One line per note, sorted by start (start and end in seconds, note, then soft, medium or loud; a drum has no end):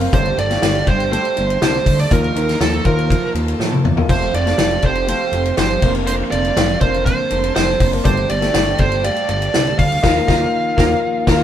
0.00 0.11 D3 medium
0.00 0.11 A#3 medium
0.00 0.11 C4 medium
0.00 0.14 C4 soft
0.00 0.15 C4 medium
0.00 0.13 D4 soft
0.00 0.12 A#4 medium
0.00 0.15 A#4 medium
0.00 0.15 C5 medium
0.00 0.12 F5 medium
0.00 ride soft
0.12 0.33 G1 loud
0.12 0.83 G2 medium
0.12 0.38 G2 medium
0.12 0.38 D3 loud
0.12 2.09 G3 medium
0.12 0.38 G3 medium
0.12 0.48 A3 medium
0.12 2.09 A3 medium
0.12 2.09 D4 medium
0.12 0.38 D4 medium
0.12 1.58 G4 medium
0.12 0.48 G4 medium
0.12 0.37 G4 loud
0.12 0.36 A4 loud
0.12 0.36 C5 loud
0.12 0.19 C#5 medium
0.12 1.58 G5 medium
0.12 kick loud
0.12 hi-hat pedal medium
0.12 ride medium
0.18 0.51 D5 medium
0.25 ride soft
0.37 0.58 G1 loud
0.37 0.61 G3 soft
0.37 0.62 D4 medium
0.37 0.62 G4 medium
0.37 0.62 A4 medium
0.37 0.89 D5 loud
0.37 ride medium
0.50 1.09 A3 medium
0.50 1.09 G4 medium
0.50 1.09 F5 medium
0.50 snare soft
0.50 ride soft
0.62 0.83 G1 medium
0.62 0.87 G2 medium
0.62 0.87 D3 medium
0.62 0.87 G3 medium
0.62 0.87 D4 loud
0.62 0.86 G4 loud
0.62 0.85 A4 loud
0.62 snare loud
0.62 ride medium
0.75 ride soft
0.86 1.18 G1 loud
0.86 1.10 G3 soft
0.86 1.11 D4 medium
0.86 1.12 G4 medium
0.86 1.11 A4 medium
0.86 1.11 C5 loud
0.86 kick medium
0.86 ride soft
1.00 ride soft
1.11 1.36 G3 medium
1.11 2.06 A3 medium
1.11 1.37 D4 medium
1.11 2.06 G4 medium
1.11 1.36 G4 medium
1.11 2.06 A4 medium
1.11 1.35 A4 medium
1.11 1.61 C5 medium
1.11 ride medium
1.25 ride soft
1.37 1.58 G1 loud
1.37 1.61 G3 soft
1.37 1.61 D4 medium
1.37 1.62 G4 medium
1.37 1.61 A4 medium
1.37 ride medium
1.50 ride soft
1.61 1.82 C2 medium
1.61 1.86 G2 medium
1.61 1.86 D3 medium
1.61 1.87 G3 medium
1.61 1.87 D4 medium
1.61 1.86 G4 medium
1.61 2.10 A4 medium
1.61 1.84 A4 loud
1.61 2.00 C5 loud
1.61 2.10 A5 medium
1.61 snare loud
1.61 ride medium
1.86 2.06 D2 loud
1.86 2.11 G3 soft
1.86 2.11 D4 soft
1.86 2.11 G4 medium
1.86 2.11 A4 medium
1.86 kick loud
1.86 open hi-hat medium
1.86 ride medium
1.99 2.11 D5 medium
1.99 ride soft
2.10 2.32 D#2 loud
2.10 2.35 D#3 medium
2.10 2.81 D#3 medium
2.10 2.36 F3 medium
2.10 8.01 F3 medium
2.10 2.81 A#3 medium
2.10 4.07 A#3 medium
2.10 2.36 A#3 medium
2.10 4.07 D#4 medium
2.10 2.81 F4 medium
2.10 2.36 F4 medium
2.10 3.08 A#4 medium
2.10 2.34 A#4 loud
2.10 2.58 A#4 medium
2.10 2.81 D#5 medium
2.10 3.08 A#5 medium
2.10 kick loud
2.10 hi-hat pedal medium
2.10 ride medium
2.24 ride soft
2.35 2.56 D#2 loud
2.35 2.60 A#3 soft
2.35 2.60 F4 medium
2.35 2.60 A#4 medium
2.35 ride medium
2.49 snare soft
2.49 ride soft
2.60 2.81 D#2 loud
2.60 2.85 D#3 medium
2.60 2.85 F3 medium
2.60 2.86 A#3 loud
2.60 2.85 F4 medium
2.60 2.86 A4 medium
2.60 2.83 A#4 loud
2.60 snare medium
2.60 ride medium
2.73 ride soft
2.84 3.16 D#2 medium
2.84 3.79 A#3 medium
2.84 3.09 A#3 soft
2.84 3.79 F4 medium
2.84 3.10 F4 medium
2.84 3.10 A#4 medium
2.84 3.32 A#4 medium
2.84 3.79 C5 medium
2.84 kick medium
2.84 ride soft
2.99 ride soft
3.09 3.34 F3 medium
3.09 3.35 A#3 medium
3.09 3.34 F4 medium
3.09 4.07 A4 medium
3.09 3.32 A#4 medium
3.09 4.07 A5 medium
3.09 kick loud
3.09 ride medium
3.34 3.55 D#2 loud
3.34 3.58 A#3 soft
3.34 3.59 F4 soft
3.34 3.59 A#4 medium
3.34 ride medium
3.48 ride soft
3.59 3.80 A2 medium
3.59 3.84 D#3 medium
3.59 3.84 F3 medium
3.59 3.84 A#3 medium
3.59 3.84 F4 medium
3.59 3.83 A#4 loud
3.59 snare medium
3.72 high tom medium
3.84 4.05 E2 medium
3.84 4.09 A#3 soft
3.84 4.09 F4 soft
3.84 4.09 A#4 medium
3.84 mid tom medium
3.96 4.08 A#3 medium
3.96 4.08 F4 medium
3.96 4.08 D#5 medium
3.96 floor tom loud
4.09 4.30 F1 loud
4.09 5.81 C3 medium
4.09 4.34 F3 medium
4.09 5.81 G3 medium
4.09 4.44 A3 medium
4.09 5.81 A3 medium
4.09 4.34 C4 medium
4.09 8.01 F4 medium
4.09 4.44 G4 medium
4.09 5.79 G4 medium
4.09 4.34 G4 medium
4.09 4.32 A4 medium
4.09 4.35 C5 medium
4.09 4.44 F5 medium
4.09 5.79 G5 medium
4.09 kick loud
4.09 splash medium
4.22 ride soft
4.33 4.54 F1 loud
4.33 4.58 C4 medium
4.33 4.58 G4 medium
4.33 4.58 A4 medium
4.33 4.85 D5 medium
4.33 ride medium
4.46 5.05 A3 medium
4.46 5.05 G4 medium
4.46 5.05 F5 medium
4.46 snare soft
4.46 ride soft
4.58 4.79 F1 loud
4.58 4.83 F3 medium
4.58 4.84 C4 medium
4.58 4.83 G4 loud
4.58 4.82 A4 medium
4.58 snare loud
4.58 ride medium
4.71 ride soft
4.82 5.14 F1 loud
4.82 5.08 C4 soft
4.82 5.09 G4 medium
4.82 5.08 A4 medium
4.82 5.07 C5 medium
4.82 kick medium
4.82 ride soft
4.95 ride soft
5.07 5.33 F3 medium
5.07 5.82 A3 medium
5.07 5.34 C4 medium
5.07 5.82 G4 medium
5.07 5.33 G4 medium
5.07 5.32 A4 medium
5.07 5.55 C5 medium
5.07 5.82 F5 medium
5.07 ride medium
5.32 5.53 F1 medium
5.32 5.57 C4 soft
5.32 5.58 G4 soft
5.32 5.58 A4 medium
5.32 ride medium
5.45 ride soft
5.57 5.78 G1 loud
5.57 5.83 F3 medium
5.57 5.83 C4 medium
5.57 5.83 G4 medium
5.57 5.82 A4 loud
5.57 5.93 C5 medium
5.57 snare loud
5.57 ride medium
5.70 ride soft
5.82 6.23 F1 loud
5.82 8.03 D3 medium
5.82 8.03 A#3 medium
5.82 6.76 A#3 medium
5.82 8.03 C4 medium
5.82 6.07 C4 soft
5.82 6.76 D4 medium
5.82 6.07 D4 medium
5.82 7.04 F4 medium
5.82 6.07 A#4 medium
5.82 6.76 C5 medium
5.82 7.04 F5 medium
5.82 kick loud
5.82 crash medium
5.95 ride soft
6.07 6.32 F3 medium
6.07 6.32 C4 medium
6.07 6.31 D4 medium
6.07 6.30 A#4 loud
6.07 6.13 C5 medium
6.07 hi-hat pedal medium
6.07 ride medium
6.31 6.52 F1 medium
6.31 6.55 C4 medium
6.31 6.56 D4 medium
6.31 6.56 A#4 medium
6.31 6.78 D5 loud
6.31 ride medium
6.45 ride soft
6.56 6.77 F1 loud
6.56 6.81 F3 medium
6.56 6.81 C4 loud
6.56 6.81 D4 medium
6.56 6.80 A#4 loud
6.56 snare loud
6.56 ride medium
6.69 ride soft
6.81 7.12 F1 medium
6.81 7.75 A#3 medium
6.81 7.06 C4 soft
6.81 7.75 D4 medium
6.81 7.07 D4 medium
6.81 7.06 A#4 medium
6.81 7.04 C5 medium
6.81 7.75 C5 medium
6.81 kick medium
6.81 ride medium
6.94 ride soft
7.05 7.31 F3 medium
7.05 7.31 C4 medium
7.05 7.31 D4 medium
7.05 8.04 A4 medium
7.05 7.29 A#4 medium
7.05 7.54 C5 medium
7.05 8.03 A5 medium
7.05 kick loud
7.05 ride medium
7.31 7.52 F1 loud
7.31 7.55 C4 soft
7.31 7.56 D4 medium
7.31 7.56 A#4 medium
7.31 ride medium
7.44 ride soft
7.55 7.76 F1 medium
7.55 7.80 F3 medium
7.55 7.81 C4 medium
7.55 7.80 D4 medium
7.55 7.78 A#4 loud
7.55 7.90 C5 medium
7.55 snare loud
7.55 ride medium
7.79 8.01 F#1 loud
7.79 8.05 C4 soft
7.79 8.04 D4 medium
7.79 8.05 A#4 medium
7.79 kick loud
7.79 open hi-hat medium
7.79 ride medium
7.92 8.04 A#3 medium
7.92 8.04 D4 medium
7.92 8.04 C5 medium
7.92 ride soft
8.04 8.26 G1 loud
8.04 8.29 G2 medium
8.04 8.75 G2 medium
8.04 8.30 D3 medium
8.04 8.30 G3 medium
8.04 10.02 G3 medium
8.04 8.40 A3 medium
8.04 10.02 A3 medium
8.04 8.30 D4 loud
8.04 10.02 D4 medium
8.04 8.40 G4 medium
8.04 9.51 G4 medium
8.04 8.29 G4 loud
8.04 8.28 A4 loud
8.04 8.31 C5 medium
8.04 8.40 D5 medium
8.04 9.51 G5 loud
8.04 kick loud
8.04 hi-hat pedal medium
8.04 ride medium
8.17 ride soft
8.29 8.50 G1 loud
8.29 8.54 G3 soft
8.29 8.55 D4 medium
8.29 8.55 G4 medium
8.29 8.54 A4 medium
8.29 8.81 D5 loud
8.29 ride medium
8.41 9.01 A3 medium
8.41 9.01 G4 medium
8.41 9.00 A4 medium
8.41 snare soft
8.41 ride soft
8.54 8.75 G1 medium
8.54 8.79 G2 loud
8.54 8.80 D3 loud
8.54 8.80 G3 loud
8.54 8.80 D4 loud
8.54 8.79 G4 loud
8.54 8.78 A4 loud
8.54 snare loud
8.54 ride medium
8.78 9.10 G1 loud
8.78 9.03 G3 medium
8.78 9.04 D4 medium
8.78 9.04 G4 medium
8.78 9.04 A4 medium
8.78 9.02 C5 medium
8.78 kick medium
8.78 ride medium
8.92 ride soft
9.04 9.29 G3 medium
9.04 9.98 A3 medium
9.04 9.29 D4 medium
9.04 9.98 G4 medium
9.04 9.28 G4 medium
9.04 9.27 A4 medium
9.04 9.28 D5 medium
9.04 9.98 F5 medium
9.04 ride medium
9.16 ride soft
9.29 9.49 G1 loud
9.29 9.54 G3 medium
9.29 9.54 D4 medium
9.29 9.54 G4 medium
9.29 9.54 A4 medium
9.29 9.78 D5 loud
9.29 ride medium
9.42 ride soft
9.54 9.74 C2 medium
9.54 9.79 G2 medium
9.54 9.79 D3 medium
9.54 9.79 G3 loud
9.54 9.78 D4 loud
9.54 9.78 G4 loud
9.54 10.02 A4 medium
9.54 9.77 A4 loud
9.54 10.03 A5 medium
9.54 snare loud
9.54 ride medium
9.67 ride soft
9.78 9.99 D2 loud
9.78 10.03 G3 medium
9.78 10.04 D4 medium
9.78 10.04 G4 medium
9.78 10.03 A4 medium
9.78 11.44 F5 medium
9.78 kick loud
9.78 open hi-hat medium
9.78 ride medium
9.92 ride soft
10.02 10.20 D#2 loud
10.02 10.20 D#3 medium
10.02 11.44 F3 medium
10.02 10.20 F3 loud
10.02 10.20 A#3 medium
10.02 11.44 A#3 medium
10.02 10.21 A#3 loud
10.02 11.44 D#4 medium
10.02 10.20 F4 medium
10.02 10.21 F4 loud
10.02 10.20 A#4 medium
10.02 10.21 A#4 medium
10.02 10.20 D#5 loud
10.02 10.20 A#5 loud
10.02 kick loud
10.02 snare loud
10.02 crash medium
10.27 10.45 D#2 loud
10.27 10.44 D#3 loud
10.27 10.45 A#3 loud
10.27 10.47 A#3 loud
10.27 10.45 F4 medium
10.27 10.46 F4 loud
10.27 10.45 A#4 loud
10.27 10.45 A#4 medium
10.27 10.45 D#5 loud
10.27 10.46 A#5 loud
10.27 kick loud
10.27 snare loud
10.77 10.94 D#2 loud
10.77 10.94 A#3 loud
10.77 10.96 A#3 medium
10.77 10.94 F4 medium
10.77 10.95 F4 loud
10.77 10.94 A#4 medium
10.77 10.94 A#4 loud
10.77 10.95 A#4 loud
10.77 10.95 A#5 medium
10.77 kick medium
10.77 snare loud
11.27 11.44 D#2 loud
11.27 11.44 A#3 loud
11.27 11.44 F4 loud
11.27 11.44 F4 medium
11.27 11.44 A#4 loud
11.27 11.44 A#4 medium
11.27 11.44 A#5 medium
11.27 kick loud
11.27 snare medium
11.27 crash medium